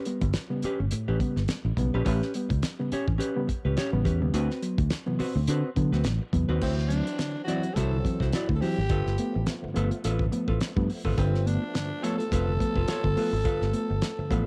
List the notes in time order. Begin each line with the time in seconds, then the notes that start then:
0.05 G3 B3, closed hi-hat
0.21 G1, muted hollow-body jazz guitar stroke, kick, closed hi-hat
0.33 muted hollow-body jazz guitar stroke, snare, closed hi-hat
0.50 C#3 G3 B3, muted hollow-body jazz guitar stroke
0.62 C#4 G4 B4, muted fingered electric bass stroke, closed hi-hat
0.80 G1 A2, muted hollow-body jazz guitar stroke
0.91 A2, muted fingered electric bass stroke, muted hollow-body jazz guitar stroke, closed hi-hat
1.08 A1 C#4 G4 B4
1.20 C#3 G3 B3, muted hollow-body jazz guitar stroke, kick, closed hi-hat
1.36 G1 G3 B3, muted hollow-body jazz guitar stroke, snare
1.48 G3 B3, muted hollow-body jazz guitar stroke, snare, closed hi-hat
1.65 A1 A2, muted hollow-body jazz guitar stroke
1.77 B1 C#3 G3 B3, kick, closed hi-hat
1.94 A#1 C#4 G4 B4
2.05 A1 A2 C#4 G4 B4, kick, closed hi-hat
2.22 snare
2.34 G3 B3, closed hi-hat
2.49 C#2, muted hollow-body jazz guitar stroke, kick, closed hi-hat
2.62 muted hollow-body jazz guitar stroke, snare, closed hi-hat
2.79 C#3 G3 B3, muted hollow-body jazz guitar stroke
2.92 C#4 G4 C#5, muted fingered electric bass stroke, closed hi-hat
3.08 A1 A2, kick
3.18 C#4 G4 B4, closed hi-hat
3.36 C#3 G3 B3
3.47 muted hollow-body jazz guitar stroke, muted fingered electric bass stroke, kick, closed hi-hat
3.64 C#2 A2 C#4 G4 B4
3.77 C#4 G4 C#5, snare, closed hi-hat
3.92 A1 C#3 G3 B3, muted hollow-body jazz guitar stroke
4.05 E2 A2 C#4 G4 B4, kick, closed hi-hat
4.21 D#2 C#3 G3 B3, muted hollow-body jazz guitar stroke
4.34 D2 C4 F#4 B4, closed hi-hat
4.50 snare
4.62 F#3 B3, closed hi-hat
4.78 D2, muted hollow-body jazz guitar stroke, kick, closed hi-hat
4.90 muted hollow-body jazz guitar stroke, snare, closed hi-hat
5.06 C3 E3 F#3 B3, muted hollow-body jazz guitar stroke
5.19 C4 F#4 B4, muted fingered electric bass stroke, open hi-hat
5.36 D2, muted hollow-body jazz guitar stroke
5.47 D3 C4 F#4 B4, closed hi-hat
5.76 C3 D3 E3 F#3 B3, muted hollow-body jazz guitar stroke, kick, closed hi-hat
5.92 D2 F#3 B3 C4 F#4 B4, snare
6.04 A1 F#3 B3, muted hollow-body jazz guitar stroke, snare, closed hi-hat
6.22 muted hollow-body jazz guitar stroke
6.33 E2 C3 E3 F#3 B3, kick, closed hi-hat
6.49 D#2 C4 F#4 B4
6.61 D2 D3 E3 F#3 C4 E4 F#4 C5, kick, crash
6.78 snare
6.89 F#3 C4 D4, closed hi-hat
7.07 muted hollow-body jazz guitar stroke, closed hi-hat
7.18 D3, muted hollow-body jazz guitar stroke, snare, closed hi-hat
7.36 muted hollow-body jazz guitar stroke
7.44 E3 F#3 C4 E4 F#4, closed hi-hat
7.49 D5
7.63 F#3 C4, muted hollow-body jazz guitar stroke, closed hi-hat
7.74 C2 F#3 C4 E4 F#4 A4, kick, closed hi-hat
7.79 C5
7.92 D3
8.04 E3 F#3 C4, muted hollow-body jazz guitar stroke, kick, closed hi-hat
8.20 C2 E4 F#4 C5, kick, snare
8.33 F#3 C4 E4 F#4 D5, snare, closed hi-hat
8.49 D2 D3, muted hollow-body jazz guitar stroke, kick
8.55 A4
8.61 E3 F#3 C4 E4 F#4 G4 C5, open hi-hat
8.78 G#1, muted hollow-body jazz guitar stroke
8.89 G1 G2 D3 F3 A3 B3 F4 A4 B4, kick, closed hi-hat
9.06 G1, snare
9.18 A3 B3, closed hi-hat
9.34 A1, muted hollow-body jazz guitar stroke
9.46 A3 B3, muted hollow-body jazz guitar stroke, snare, closed hi-hat
9.63 G2 D3, muted hollow-body jazz guitar stroke, muted fingered electric bass stroke
9.74 G1 F3 A3 B3 F4 A4 B4, closed hi-hat
9.91 muted hollow-body jazz guitar stroke, closed hi-hat
10.04 A1 A3 B3 F4 A4 B4, closed hi-hat
10.19 G2 D3, kick
10.31 F3 A3 B3, muted hollow-body jazz guitar stroke, closed hi-hat
10.48 A1 F4 A4 B4, kick
10.61 muted hollow-body jazz guitar stroke, snare, closed hi-hat
10.76 G2 F3 A3 B3, muted hollow-body jazz guitar stroke, kick
10.90 open hi-hat
11.05 G#1 G2 D3 F4 A4 B4, kick
11.17 G1 G2 D3 C4 F4 A4 B4, kick, closed hi-hat
11.34 snare
11.46 A3 B3 D4, closed hi-hat
11.63 muted hollow-body jazz guitar stroke
11.74 G2 D3, muted hollow-body jazz guitar stroke, snare, closed hi-hat
11.90 muted hollow-body jazz guitar stroke
12.03 F3 A3 B3 F4 A4 C#5, closed hi-hat
12.18 A3 B3 A4, muted hollow-body jazz guitar stroke, closed hi-hat
12.31 F1 A3 B3 F4 A4 B4, kick, closed hi-hat
12.48 G2 D3
12.60 F3 A3 B3, muted hollow-body jazz guitar stroke, kick, closed hi-hat
12.76 F1 F4 A4 B4, kick
12.88 A3 B3 F4 A4 C#5, muted fingered electric bass stroke, snare, closed hi-hat
13.04 G1 G2 D3, muted hollow-body jazz guitar stroke, kick
13.16 F3 A3 B3 F4 A4 B4, open hi-hat
13.33 G#1, muted hollow-body jazz guitar stroke
13.44 G2 D3 F4 A4 B4, kick, closed hi-hat
13.62 G1, snare
13.73 A3 B3, closed hi-hat
13.90 G1, muted hollow-body jazz guitar stroke
14.02 A3 B3, muted hollow-body jazz guitar stroke, snare, closed hi-hat
14.18 G2 D3, muted fingered electric bass stroke, muted hollow-body jazz guitar stroke
14.30 A1 F3 A3 B3 F4 A4 B4, kick, closed hi-hat